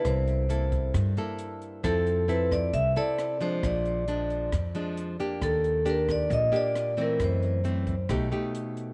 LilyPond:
<<
  \new Staff \with { instrumentName = "Vibraphone" } { \time 4/4 \key c \lydian \tempo 4 = 134 c''2 r2 | a'4 b'8 d''8 e''8 d''4 c''8 | d''2 r2 | a'4 bes'8 d''8 ees''8 d''4 bes'8 |
c''2 r2 | }
  \new Staff \with { instrumentName = "Nylon-string guitar" } { \time 4/4 \key c \lydian << { <bes e' a'>4 <bes e' a'>4. <bes e' a'>4. | <c' e' a'>4 <c' e' a'>4 r8 <c' e' a'>4 <f aes d'>8~ | <f aes d'>4 <f aes d'>4 r8 <f aes d'>4 <bes d' g'>8~ | <bes d' g'>4 <bes d' g'>4. <bes d' g'>4 <e a c'>8~ |
<e a c'>4 <e a c'>8 r8 <a dis' g'>8 <a dis' g'>4. | } \\ { c2 g,2 | f2 c2 | bes,2 f,2 | ees2 bes,2 |
fis,2 b,2 | } >> }
  \new Staff \with { instrumentName = "Upright bass" } { \clef bass \time 4/4 \key c \lydian c,2 g,8 r4. | f,2 c,8 r4. | bes,,2 f,8 r4. | ees,2 bes,,8 r4. |
fis,2 b,,8 r4. | }
  \new DrumStaff \with { instrumentName = "Drums" } \drummode { \time 4/4 <hh bd ss>8 hh8 hh8 <hh bd>8 <hh bd ss>8 hh8 hh8 hh8 | <hh bd ss>8 hh8 hh8 <hh bd ss>8 <hh bd>8 hh8 <hh ss>8 hh8 | <hh bd ss>8 hh8 hh8 hh8 <hh bd ss>8 hh8 hh8 hh8 | <hh bd ss>8 hh8 hh8 <hh bd ss>8 <hh bd>8 hh8 <hh ss>8 hh8 |
<hh bd ss>8 hh8 hh8 <hh bd>8 <hh bd ss>8 hh8 hh8 hh8 | }
>>